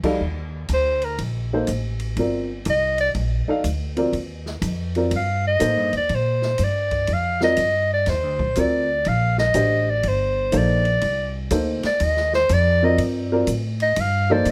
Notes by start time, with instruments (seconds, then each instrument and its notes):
0.03 upright piano G3 D#4 A4 D5 F5, muted upright bass stroke, kick, crash
0.21 upright bass D#2
0.69 upright bass D2, hi-hat pedal, ride
0.74 soprano saxophone C5
1.02 soprano saxophone A#4, ride
1.18 upright bass A#1, ride
1.53 upright piano A#3 D#4 A4 C5
1.67 upright bass A1, hi-hat pedal, ride
2.00 ride
2.17 upright bass G1, upright piano C4 F4 A#4 D5, ride
2.65 upright bass C2, hi-hat pedal, ride
2.70 soprano saxophone D#5
2.98 soprano saxophone D5, ride
3.15 upright bass A#1, ride
3.48 upright piano D#4 A4 D5 F5, muted upright bass stroke
3.64 upright bass D2, hi-hat pedal, ride
3.97 upright piano C4 F4 A#4 D5, ride
4.13 upright bass D#2, ride
4.46 snare
4.62 upright bass F2, hi-hat pedal, ride
4.95 upright piano C4 F4 A#4 D5, ride
5.11 upright bass G2, ride
5.16 soprano saxophone F5
5.47 soprano saxophone D#5
5.59 upright bass A2, upright piano A#3 D#4 A4 C5, hi-hat pedal, ride
5.77 upright bass G2
5.93 upright bass D#2, ride
5.97 soprano saxophone D5
6.09 upright bass A#2, ride
6.15 soprano saxophone C5
6.42 snare
6.58 upright bass G2, hi-hat pedal, ride
6.64 soprano saxophone D5
6.91 kick, ride
7.07 upright bass F2, ride
7.14 soprano saxophone F5
7.41 upright piano C4 F4 A#4 D5, soprano saxophone D#5, snare
7.57 upright bass G2, hi-hat pedal, ride
7.94 soprano saxophone D5
8.06 upright bass D#2, soprano saxophone C5, snare, ride
8.23 upright bass D2
8.39 upright bass A#1, kick
8.55 upright bass D2, upright piano C4 F4 A#4 D5, hi-hat pedal, ride
8.60 soprano saxophone D5
9.05 upright bass A#1, soprano saxophone F5, ride
9.38 soprano saxophone D#5, snare
9.54 upright bass A1, upright piano D4 G4 C5 D#5, hi-hat pedal, ride
9.90 soprano saxophone D5
10.03 upright bass G1, ride
10.08 soprano saxophone C5
10.52 upright bass A#1, upright piano A#3 D#4 A4 C5, hi-hat pedal, ride
10.57 soprano saxophone D5
10.85 ride
11.01 upright bass C2, ride
11.50 upright bass D2, upright piano A#3 D#4 A4 C5, hi-hat pedal, ride
11.83 soprano saxophone D5, muted upright bass stroke, snare, ride
12.00 upright bass D#2, ride
12.04 soprano saxophone D#5
12.17 snare
12.33 soprano saxophone C5, snare
12.49 upright bass F2, hi-hat pedal, ride
12.53 soprano saxophone D5
12.82 upright piano C4 F4 A#4 D5, soprano saxophone D#5
12.98 upright bass G2, ride
13.32 upright piano C4 F4 A#4 D5
13.47 upright bass A2, hi-hat pedal, ride
13.80 soprano saxophone D#5, ride
13.96 upright bass G2, ride
14.01 soprano saxophone F5
14.30 upright piano A#3 D#4 A4 C5, soprano saxophone D5
14.45 upright bass A#2, hi-hat pedal, ride